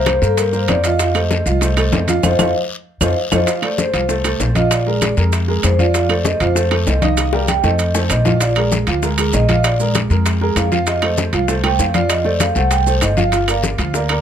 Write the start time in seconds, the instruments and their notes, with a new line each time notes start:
Already playing: upright bass C2, upright piano A#3 A#4 C5, vibraphone C5
0.06 high bongo, high conga, high timbale, low timbale, short guiro, claves, maracas
0.22 upright bass G2, upright piano A#3 A#4 C5, vibraphone A4, high conga, short guiro, maracas
0.37 vibraphone A#4, high bongo, high conga, high timbale, long guiro, maracas
0.53 upright piano A#3 A#4 C5, vibraphone C5, high bongo, high conga, maracas
0.68 upright bass F2, vibraphone D5, high bongo, low bongo, high conga, high timbale, low timbale, short guiro, claves, maracas
0.84 upright piano F3 F4 F5, vibraphone D#5, high bongo, high timbale, short guiro, maracas
0.99 upright piano F3 F4 F5, high bongo, high conga, high timbale, long guiro, maracas
1.15 upright piano A3 A4 C5, high bongo, high conga, high timbale, claves, maracas
1.30 high bongo, high conga, low timbale, short guiro, maracas
1.46 upright bass C2, upright piano F3 F4 F5, short guiro, maracas
1.61 upright piano A3 A4 C5, high bongo, high conga, high timbale, long guiro, maracas
1.77 upright piano A3 A4 C5, high conga, high timbale, claves, maracas
1.92 upright bass F2, high bongo, low bongo, high conga, low timbale, short guiro, maracas
2.08 upright piano F3 F4 F5, high bongo, high conga, high timbale, short guiro, maracas
2.23 upright bass F2, upright piano F4 A4 C5, vibraphone C5 D#5 F5, low bongo, high conga, high timbale, long guiro, claves, maracas
2.39 upright bass F2, upright piano F4 A4 C5, vibraphone C5 D#5 F5, low bongo, high conga, high timbale, long guiro, claves, maracas
3.01 upright bass F2, upright piano F4 A4 C5, vibraphone C5 D#5 F5, low bongo, high conga, high timbale, long guiro, claves, maracas
3.32 upright bass F2, upright piano F4 A4 C5, vibraphone C5 D#5 F5, low bongo, high conga, high timbale, long guiro, claves, maracas
3.47 upright piano F3 F4 F5, high bongo, high conga, high timbale, long guiro, maracas
3.62 upright piano A3 A4 C5, vibraphone D5, high bongo, high conga, high timbale, claves
3.78 vibraphone C5, high bongo, high conga, short guiro, maracas
3.94 upright bass C2, upright piano F3 F4 F5, high bongo, high conga, high timbale, short guiro, maracas
4.09 upright piano A3 A4 C5, high bongo, high conga, long guiro, maracas
4.24 upright piano A3 A4 C5, high bongo, high conga, high timbale, claves, maracas
4.40 upright bass A#1, high bongo, low bongo, high conga, low timbale, short guiro, maracas
4.55 upright piano F3 F4 F5, vibraphone D#5, high conga, high timbale, short guiro, maracas
4.71 vibraphone D5, high bongo, high timbale, long guiro, claves, maracas
4.86 upright piano G#3 G#4 A#4, high bongo, high conga
5.01 high bongo, high conga, high timbale, short guiro, claves, maracas
5.17 upright bass F2, upright piano G#3 G#4 A#4, high bongo, high conga, short guiro, maracas
5.33 high bongo, high conga, high timbale, long guiro, maracas
5.48 upright piano G#3 G#4 A#4, high bongo, high conga
5.63 upright bass F2, vibraphone C5, high bongo, low bongo, high conga, high timbale, low timbale, short guiro, claves, maracas
5.79 upright piano F3 F4 F5, vibraphone D5, high conga, short guiro, maracas
5.94 upright piano F3 F4 F5, high bongo, high conga, high timbale, long guiro, maracas
6.09 upright piano A3 A4 C5, high bongo, high conga, high timbale, claves
6.25 vibraphone D#5, high bongo, high conga, short guiro, maracas
6.40 upright bass F2, upright piano F3 F4 F5, vibraphone C5, high bongo, high conga, high timbale, short guiro, maracas
6.55 upright piano A3 A4 C5, high bongo, high conga, long guiro, maracas
6.71 upright piano A3 A4 C5, high bongo, high conga, high timbale, claves
6.87 upright bass C2, vibraphone D#5, high bongo, low bongo, high conga, low timbale, short guiro, maracas
7.02 upright piano D#3 D#4 D#5, vibraphone F5, high conga, high timbale, short guiro, maracas
7.17 high bongo, high timbale, long guiro, claves, maracas
7.33 upright piano G3 G4 A#4, high bongo, high conga
7.48 vibraphone G5, high bongo, high conga, high timbale, short guiro, claves, maracas
7.63 upright bass F2, upright piano A3 A4 C5, vibraphone D#5, low bongo, high conga, short guiro, maracas
7.79 high conga, high timbale, long guiro, maracas
7.95 upright piano A3 A4 C5, low bongo, high conga, maracas
8.10 upright bass A#1, vibraphone D#5, low bongo, high conga, high timbale, low timbale, short guiro, claves, maracas
8.25 upright piano F3 F4 F5, low bongo, high conga, short guiro, maracas
8.41 upright piano F3 F4 F5, vibraphone D5, high bongo, high conga, high timbale, long guiro, maracas
8.56 upright piano G#3 G#4 A#4, high bongo, high conga, high timbale, claves
8.72 high bongo, high conga, short guiro, maracas
8.87 upright bass D2, upright piano F3 F4 F5, high bongo, high conga, high timbale, short guiro, maracas
9.02 upright piano G#3 G#4 A#4, high bongo, high conga, long guiro, maracas
9.18 upright piano G#3 G#4 A#4, high bongo, high conga, high timbale, claves, maracas
9.33 upright bass A#1, vibraphone D#5, high bongo, low bongo, high conga, low timbale, short guiro, maracas
9.48 upright piano F3 F4 F5, high conga, high timbale, short guiro, maracas
9.64 vibraphone D5, high bongo, high conga, high timbale, long guiro, claves, maracas
9.79 upright piano G#3 G#4 A#4, high bongo, high conga, maracas
9.95 high bongo, high conga, high timbale, short guiro, claves, maracas
10.10 upright bass F2, upright piano G#3 G#4 A#4, high bongo, high conga, short guiro, maracas
10.25 high bongo, high conga, high timbale, long guiro, maracas
10.41 upright piano G#3 G#4 A#4, high bongo, high conga
10.56 upright bass F2, vibraphone F5, high bongo, low bongo, high conga, high timbale, short guiro, claves, maracas
10.71 upright piano F3 F4 F5, high conga, short guiro, maracas
10.87 upright piano F3 F4 F5, vibraphone D#5, high bongo, high conga, high timbale, long guiro, maracas
11.02 upright piano A3 A4 C5, high bongo, high conga, high timbale, claves
11.18 high bongo, high conga, short guiro, maracas
11.33 upright bass C2, upright piano F3 F4 F5, high bongo, high conga, high timbale, short guiro, maracas
11.48 upright piano A3 A4 C5, high bongo, high conga, long guiro, maracas
11.63 upright piano A3 A4 C5, vibraphone G5, high bongo, high conga, high timbale, claves
11.79 upright bass F2, vibraphone F5, high bongo, low bongo, high conga, short guiro, maracas
11.94 upright piano F3 F4 F5, vibraphone D5, high conga, high timbale, short guiro, maracas
12.09 vibraphone D#5, high bongo, high timbale, long guiro, claves, maracas
12.24 upright piano A3 A4 C5, vibraphone D5, high bongo, high conga
12.40 vibraphone F5, high bongo, high conga, high timbale, short guiro, claves, maracas
12.55 upright bass C2, upright piano A3 A4 C5, vibraphone F#5, high bongo, high conga, short guiro, maracas
12.71 vibraphone G5, high bongo, high conga, high timbale, long guiro, maracas
12.86 upright piano A3 A4 C5, vibraphone C5, high bongo, high conga, maracas
13.01 upright bass G1, vibraphone D#5, high bongo, low bongo, high conga, high timbale, short guiro, claves, maracas
13.17 upright piano F3 F4 F5, vibraphone F5, high conga, short guiro, maracas
13.32 upright piano F3 F4 F5, high bongo, high conga, high timbale, long guiro, maracas
13.48 upright piano A#3 A#4 D5, high bongo, high conga, high timbale, claves, maracas
13.63 high bongo, high conga, short guiro, maracas
13.78 upright bass D2, upright piano F3 F4 F5, high bongo, high conga, high timbale, short guiro, maracas
13.94 upright piano A#3 A#4 D5, high bongo, high conga, long guiro, maracas
14.09 upright piano A#3 A#4 D5, high bongo, high conga, high timbale, claves